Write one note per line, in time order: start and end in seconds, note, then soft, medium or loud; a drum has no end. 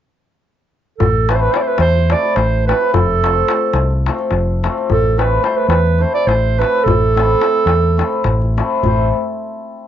0.98 1.47 A1 medium
0.98 1.31 A4 medium
0.98 darbuka dum medium
1.29 1.46 A3 medium
1.29 1.47 C4 medium
1.29 1.47 E4 medium
1.29 1.47 A4 medium
1.29 1.37 B4 medium
1.29 darbuka tek medium
1.35 1.43 C5 medium
1.42 1.54 B4 medium
1.52 1.71 A3 medium
1.52 1.71 C4 soft
1.52 1.71 E4 medium
1.52 1.71 A4 medium
1.52 1.58 C5 medium
1.52 darbuka tek medium
1.56 1.63 D5 medium
1.61 1.69 C5 medium
1.68 1.79 B4 medium
1.78 2.13 E2 medium
1.78 2.13 C5 medium
1.78 darbuka tek medium
1.95 darbuka tek soft
2.10 2.29 A3 medium
2.10 2.29 C4 soft
2.10 2.29 E4 soft
2.10 2.29 A4 medium
2.10 2.37 D5 medium
2.10 darbuka tek medium
2.23 darbuka tek soft
2.35 2.71 A1 loud
2.35 2.66 C5 medium
2.35 darbuka tek medium
2.67 2.86 A3 medium
2.67 2.87 C4 medium
2.67 2.87 E4 medium
2.67 2.92 B4 medium
2.67 darbuka tek medium
2.71 2.88 A4 medium
2.81 darbuka tek soft
2.94 3.42 F1 medium
2.94 4.01 A4 medium
2.94 darbuka dum medium
3.24 3.41 A3 medium
3.24 3.41 C4 medium
3.24 3.41 F4 medium
3.24 3.42 A4 medium
3.24 darbuka tek medium
3.48 3.66 A3 medium
3.48 3.66 C4 soft
3.48 3.67 F4 medium
3.48 3.67 A4 medium
3.48 darbuka tek medium
3.73 4.08 C2 medium
3.73 darbuka tek medium
3.90 darbuka tek soft
4.06 4.24 A3 medium
4.06 4.24 C4 medium
4.06 4.25 F4 medium
4.06 4.25 A4 medium
4.06 darbuka tek medium
4.18 darbuka tek soft
4.30 4.66 F1 medium
4.30 darbuka tek medium
4.63 4.81 A3 medium
4.63 4.81 C4 medium
4.63 4.82 F4 medium
4.63 4.82 A4 medium
4.63 darbuka tek medium
4.78 darbuka tek soft
4.90 5.37 A1 medium
4.90 5.20 A4 medium
4.90 darbuka dum medium
5.17 5.35 A3 medium
5.17 5.36 C4 medium
5.17 5.36 E4 medium
5.17 5.36 A4 medium
5.17 5.44 B4 medium
5.17 darbuka tek medium
5.43 5.61 A3 medium
5.43 5.61 C4 soft
5.43 5.62 E4 medium
5.43 5.61 A4 medium
5.43 5.58 C5 medium
5.43 darbuka tek medium
5.57 5.68 B4 medium
5.68 6.04 E2 medium
5.68 6.03 B4 medium
5.68 darbuka tek medium
5.86 darbuka tek soft
5.98 6.18 A3 medium
5.98 6.18 C4 soft
5.98 6.18 E4 soft
5.98 6.19 A4 medium
5.98 6.14 C5 medium
6.14 6.29 D5 medium
6.14 darbuka tek soft
6.27 6.62 A1 medium
6.27 6.60 C5 medium
6.27 darbuka tek medium
6.57 6.77 A3 medium
6.57 6.77 C4 medium
6.57 6.77 E4 medium
6.57 6.77 A4 medium
6.57 6.85 B4 medium
6.62 darbuka tek medium
6.75 darbuka tek soft
6.84 7.34 A1 medium
6.84 8.56 A4 medium
6.88 darbuka dum medium
7.02 darbuka tek soft
7.15 7.32 A3 medium
7.15 7.33 C4 medium
7.15 7.33 E4 medium
7.15 7.33 A4 medium
7.15 darbuka tek medium
7.30 darbuka tek soft
7.40 7.58 A3 soft
7.40 7.58 C4 medium
7.40 7.58 E4 medium
7.40 7.59 A4 medium
7.40 darbuka tek medium
7.55 darbuka tek soft
7.66 8.01 E2 medium
7.66 darbuka tek medium
7.83 darbuka tek soft
7.97 8.16 A3 medium
7.97 8.16 C4 medium
7.97 8.17 E4 medium
7.97 8.17 A4 medium
7.97 darbuka tek medium
8.12 darbuka tek soft
8.24 8.60 A1 medium
8.24 darbuka tek medium
8.24 darbuka dum medium
8.42 darbuka tek soft
8.57 8.75 A3 medium
8.57 8.75 C4 medium
8.57 8.75 E4 medium
8.57 8.76 A4 medium
8.57 darbuka tek medium
8.83 9.11 A1 medium
8.83 9.11 A3 medium
8.83 9.11 C4 soft
8.83 9.11 E4 medium
8.83 9.11 A4 medium
8.83 9.11 C5 medium
8.83 darbuka dum medium